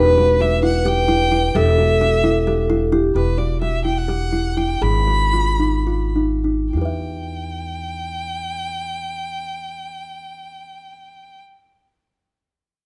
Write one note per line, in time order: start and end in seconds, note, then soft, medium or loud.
0.00 1.52 E1 medium
0.00 0.42 B4 medium
0.00 1.51 B4 medium
0.18 0.31 F#4 medium
0.41 0.53 F#4 medium
0.41 0.64 E5 medium
0.63 0.76 E4 medium
0.63 0.89 F#5 medium
0.85 0.98 G4 medium
0.85 1.58 G5 medium
1.08 1.21 E4 medium
1.32 1.45 E4 medium
1.55 3.12 E1 medium
1.55 1.68 G4 medium
1.55 2.89 A4 medium
1.55 2.70 E5 medium
1.78 1.91 F#4 medium
2.01 2.14 F#4 medium
2.24 2.37 E4 medium
2.47 2.60 G4 medium
2.70 2.82 E4 medium
2.92 3.05 E4 medium
2.92 3.14 G4 medium
3.15 4.78 E1 medium
3.15 3.29 G4 medium
3.15 3.39 B4 medium
3.38 3.51 F#4 medium
3.38 3.61 D5 medium
3.62 3.75 F#4 medium
3.62 3.83 E5 medium
3.85 3.98 E4 medium
3.85 3.99 G5 medium
3.97 4.59 F#5 medium
4.08 4.22 G4 medium
4.33 4.46 E4 medium
4.57 4.71 E4 medium
4.57 4.83 G5 medium
4.81 6.70 G#1 medium
4.81 4.96 G#4 medium
4.81 6.15 B5 loud
5.07 5.22 F#4 medium
5.33 5.48 F4 medium
5.59 5.75 D#4 medium
5.87 6.02 F4 medium
6.16 6.32 D#4 medium
6.44 6.61 D#4 soft
6.73 11.41 E2 medium
6.73 11.40 E4 soft
6.73 11.44 G4 soft
6.73 11.40 G5 medium
6.81 11.48 B4 soft
6.81 11.52 E5 soft